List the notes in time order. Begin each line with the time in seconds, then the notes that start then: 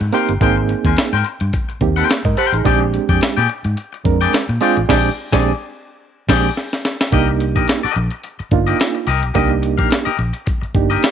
0.01 G#2, muted clean electric guitar stroke, closed hi-hat
0.12 A#3 C4 D#4 G4 A#4 C5 G5, open hi-hat
0.29 G1, muted clean electric guitar stroke, closed hi-hat
0.41 G#1 A#3 C4 D#4 G#4 A#4 C5 G5, kick, closed hi-hat
0.57 muted clean electric guitar stroke
0.69 muted clean electric guitar stroke, closed hi-hat
0.85 D#2 A#4 C5 G#5, kick, closed hi-hat
0.97 muted clean electric guitar stroke, snare, closed hi-hat
1.13 G#2 A#4 C5 G5
1.25 muted clean electric guitar stroke, closed hi-hat
1.40 G2, muted clean electric guitar stroke, closed hi-hat
1.53 muted clean electric guitar stroke, kick, closed hi-hat
1.69 muted clean electric guitar stroke, closed hi-hat
1.81 D#2 A#3 C4 D#4 G4, kick, closed hi-hat
1.96 A#4 C5 G5, closed hi-hat
2.09 muted clean electric guitar stroke, snare, closed hi-hat
2.25 G#2 A#4 D#5, muted clean electric guitar stroke, kick, closed hi-hat
2.37 G4 A#4 C5 G5, open hi-hat
2.52 A1 D#4 G#4, muted clean electric guitar stroke, closed hi-hat
2.65 A#1 G#3 C4 D4 G4 G#4 D5 G5, kick, closed hi-hat
2.81 muted clean electric guitar stroke
2.93 muted clean electric guitar stroke, closed hi-hat
3.09 F2 G#4 D5 G5, kick, closed hi-hat
3.21 muted clean electric guitar stroke, snare, closed hi-hat
3.37 A#2 G#4 D5 G5
3.49 muted clean electric guitar stroke, closed hi-hat
3.64 G#2, muted clean electric guitar stroke, closed hi-hat
3.77 muted clean electric guitar stroke, closed hi-hat
3.93 muted clean electric guitar stroke, closed hi-hat
4.05 F2 G#3 C4 D4 A#4, kick, closed hi-hat
4.21 G#4 D5 G5, closed hi-hat
4.33 muted clean electric guitar stroke, snare, closed hi-hat
4.49 A#2, muted clean electric guitar stroke, closed hi-hat
4.61 G#3 C4 D4 F4 G#4 D5 G5, open hi-hat
4.77 A1, muted clean electric guitar stroke, closed hi-hat
4.88 A#1 G#3 C4 D4 G4 G#4 D5 G5, kick, snare, crash
5.32 A#1 G#3 C4 D4 G4 G#4 D5 G#5, kick, snare
6.28 A#1 G#3 C4 D4 G4 G#4 D5 G5, kick, snare, crash
6.57 snare
6.73 snare
6.85 snare
7.01 snare
7.12 C2 A#3 D4 D#4 G4 A#4 D#5, kick, closed hi-hat
7.28 muted clean electric guitar stroke
7.40 muted clean electric guitar stroke, closed hi-hat
7.56 A#1 G4 A#4 D#5, kick, closed hi-hat
7.68 muted clean electric guitar stroke, snare, closed hi-hat
7.83 G4 A#4 D#5, muted fingered electric bass stroke
7.96 A#1, muted clean electric guitar stroke, closed hi-hat
8.10 muted clean electric guitar stroke, closed hi-hat
8.23 muted clean electric guitar stroke, closed hi-hat
8.39 muted clean electric guitar stroke, muted fingered electric bass stroke, closed hi-hat
8.51 G1 A#3 D4 D#4 F4, kick, closed hi-hat
8.67 G4 A#4 D#5, closed hi-hat
8.79 muted clean electric guitar stroke, snare, closed hi-hat
8.95 muted clean electric guitar stroke, closed hi-hat
9.07 C2 G4 A#4 D#5, open hi-hat
9.22 B1, muted clean electric guitar stroke, closed hi-hat
9.34 C2 A#3 D4 D#4 G4 A#4 D#5, kick, closed hi-hat
9.50 muted clean electric guitar stroke
9.62 muted clean electric guitar stroke, closed hi-hat
9.78 A#1 G4 A#4 F5, kick, closed hi-hat
9.90 muted clean electric guitar stroke, snare, closed hi-hat
10.05 G4 A#4 D#5, muted fingered electric bass stroke
10.18 A#1, muted clean electric guitar stroke, closed hi-hat
10.33 muted clean electric guitar stroke, closed hi-hat
10.46 muted clean electric guitar stroke, kick, closed hi-hat
10.62 muted clean electric guitar stroke, muted fingered electric bass stroke, closed hi-hat
10.75 G1 A#3 D4 D#4 G4, kick, closed hi-hat
10.90 G4 A#4 D#5, closed hi-hat
11.03 snare, closed hi-hat